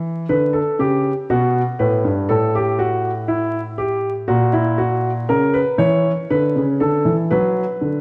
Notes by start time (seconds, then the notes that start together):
Already playing: E3
0.29 D3 B4
0.53 A4
0.79 C#3 G4
1.30 B2 F#4
1.79 A2 B4
2.04 G2
2.29 A2 A4
2.55 G4
2.79 F#4
3.28 E4
3.78 G4
4.28 A#2 F#4
4.53 E4
4.78 F#4
5.29 C#3 A#4
5.54 B4
5.78 E3 C#5
6.30 D3 B4
6.56 C#3
6.80 D3 A4
7.05 E3
7.31 F#3 B4
7.81 D3